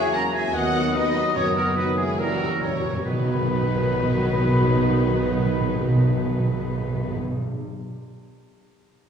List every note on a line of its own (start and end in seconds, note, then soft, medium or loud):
0.00 0.51 E2 medium
0.00 0.36 C#3 medium
0.00 0.14 A#3 medium
0.00 0.26 A#3 medium
0.00 0.36 A#3 medium
0.00 0.53 C#4 medium
0.00 0.14 E4 medium
0.00 0.53 F#4 medium
0.00 0.14 G#4 loud
0.00 0.14 E5 loud
0.00 0.14 G#5 medium
0.00 0.15 G#5 loud
0.00 0.15 G#5 medium
0.00 0.54 C#6 medium
0.13 0.34 F#3 medium
0.13 0.34 C#4 medium
0.13 0.22 A#4 loud
0.13 0.21 F#5 medium
0.13 0.33 A#5 loud
0.13 0.34 A#5 medium
0.34 0.54 A#3 medium
0.34 0.54 E4 medium
0.34 0.54 G#4 medium
0.34 0.54 E5 medium
0.34 0.54 G#5 medium
0.34 0.53 G#5 medium
0.34 0.54 G#5 loud
0.53 1.36 D#2 medium
0.53 0.93 D#3 medium
0.53 0.73 F#3 medium
0.53 0.93 F#3 medium
0.53 0.93 B3 medium
0.53 2.21 B3 medium
0.53 0.73 D#4 medium
0.53 0.93 F#4 medium
0.53 0.94 F#4 medium
0.53 0.95 D#5 medium
0.53 0.94 F#5 loud
0.53 0.96 F#5 medium
0.53 0.95 F#5 loud
0.53 2.16 D#6 medium
0.74 0.95 B3 medium
0.74 0.95 F#4 medium
0.94 1.34 D#3 medium
0.94 1.15 F#3 medium
0.94 1.34 F#3 medium
0.94 1.35 B3 medium
0.94 1.15 D#4 medium
0.94 1.36 D#4 medium
0.94 1.34 F#4 medium
0.94 1.35 B4 loud
0.94 1.36 D#5 medium
0.94 1.35 D#5 loud
1.15 1.36 B3 medium
1.15 1.36 F#4 medium
1.35 2.80 F#1 medium
1.35 1.94 F#2 loud
1.35 1.76 D#3 medium
1.35 1.76 F#3 medium
1.35 1.55 F#3 medium
1.35 1.66 B3 medium
1.35 1.43 C#4 medium
1.35 1.55 D#4 medium
1.35 1.66 F#4 medium
1.35 1.56 A#4 loud
1.35 1.57 C#5 medium
1.35 1.57 C#5 loud
1.35 1.46 C#5 loud
1.55 1.77 A#3 medium
1.55 1.77 B3 medium
1.55 1.77 F#4 medium
1.55 1.66 A#4 medium
1.55 1.76 A#4 medium
1.55 1.77 A#4 medium
1.76 2.18 D#3 medium
1.76 2.18 F#3 medium
1.76 1.98 F#3 medium
1.76 1.98 B3 medium
1.76 2.18 B3 medium
1.76 1.98 D#4 medium
1.76 2.18 F#4 medium
1.76 1.86 F#4 medium
1.76 1.97 B4 medium
1.76 1.86 B4 medium
1.76 1.98 B4 medium
1.97 2.19 G#3 medium
1.97 2.18 B3 medium
1.97 2.19 E4 medium
1.97 2.18 F#4 medium
1.97 2.07 G#4 medium
1.97 2.18 G#4 medium
1.97 2.19 G#4 medium
2.17 2.25 F#2 soft
2.17 2.60 E3 medium
2.17 2.38 F#3 medium
2.17 2.83 G3 medium
2.17 2.60 G3 medium
2.17 2.61 A#3 medium
2.17 2.60 C#4 medium
2.17 2.38 E4 medium
2.17 2.60 F#4 medium
2.17 2.60 A#4 loud
2.17 2.63 A#4 medium
2.17 2.62 A#4 medium
2.17 2.82 E6 medium
2.27 2.33 F#2 soft
2.34 2.42 F#2 soft
2.34 2.60 G3 medium
2.34 2.60 F#4 medium
2.43 2.50 F#2 medium
2.51 2.59 F#2 medium
2.60 2.67 F#2 medium
2.60 2.83 E3 medium
2.60 2.83 F#3 medium
2.60 2.83 G3 medium
2.60 3.04 C#4 medium
2.60 2.71 C#4 medium
2.60 2.83 E4 medium
2.60 2.83 F#4 medium
2.60 3.05 A#4 medium
2.60 3.04 C#5 medium
2.60 3.05 C#5 medium
2.68 2.75 F#2 medium
2.76 2.83 F#2 medium
2.82 2.91 F#2 medium
2.82 3.04 G3 medium
2.82 3.05 F#4 medium
2.92 3.00 F#2 medium
3.04 7.18 B1 medium
3.04 3.13 B2 loud
3.04 7.18 D#3 medium
3.04 7.18 F#3 medium
3.04 7.18 B3 medium
3.04 7.18 D#4 medium
3.04 7.18 F#4 medium
3.04 7.17 B4 medium
3.04 7.18 B4 medium
3.04 7.18 B5 medium
3.13 3.20 B2 loud
3.20 3.27 B2 loud
3.27 3.33 B2 medium
3.33 3.40 B2 loud
3.41 3.47 B2 loud
3.47 3.54 B2 loud
3.54 3.61 B2 loud
3.61 3.68 B2 loud
3.68 3.75 B2 loud
3.75 3.82 B2 loud
3.83 3.89 B2 loud
3.89 3.96 B2 loud
3.96 4.03 B2 loud
4.03 4.10 B2 loud
4.10 4.17 B2 loud
4.17 4.24 B2 loud
4.25 4.32 B2 loud
4.32 4.39 B2 loud
4.40 4.47 B2 loud
4.47 4.54 B2 loud
4.54 4.61 B2 medium
4.61 4.68 B2 loud
4.68 4.75 B2 loud
4.75 4.82 B2 loud
4.82 4.89 B2 medium
4.89 4.96 B2 loud
4.97 5.04 B2 medium
5.04 5.11 B2 loud
5.11 5.17 B2 loud
5.17 5.24 B2 loud
5.24 5.31 B2 loud
5.31 5.38 B2 loud
5.38 5.45 B2 loud
5.46 5.53 B2 loud
5.53 5.60 B2 loud
5.61 5.68 B2 loud
5.68 5.75 B2 loud
5.75 5.82 B2 loud
5.82 5.88 B2 loud
5.88 5.96 B2 loud
5.96 6.03 B2 loud
6.03 6.09 B2 loud
6.09 6.16 B2 medium
6.17 6.24 B2 loud
6.24 6.31 B2 loud
6.31 6.38 B2 loud
6.39 6.45 B2 loud
6.45 6.52 B2 loud
6.52 6.59 B2 medium
6.59 6.66 B2 loud
6.67 6.74 B2 loud
6.74 6.81 B2 loud
6.81 6.88 B2 loud
6.88 6.95 B2 loud
6.95 7.02 B2 loud
7.03 7.10 B2 loud
7.10 7.17 B2 loud
7.17 7.24 B2 loud
7.24 7.31 B2 loud
7.31 7.37 B2 loud
7.37 7.44 B2 medium